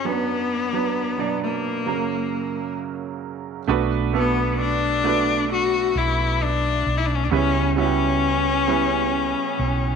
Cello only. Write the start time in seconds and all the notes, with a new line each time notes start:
0.06 B3
1.43 A#3
4.16 B3
4.61 D4
5.52 F#4
5.98 E4
6.43 D4
6.97 E4
7.06 D4
7.15 C#4
7.24 D4
7.33 C#4
7.79 C#4